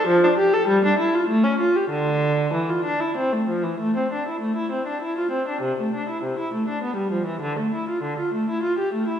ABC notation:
X:1
M:3/4
L:1/16
Q:1/4=99
K:Dm
V:1 name="Viola"
F, D G A G, D E F A, ^C F G | D,4 E, F D E C A, F, E, | [K:Am] A, C D E A, E C D E F C D | C, A, D E C, E A, D B, G, F, E, |
D, A, E F D, F A, E F G A, E |]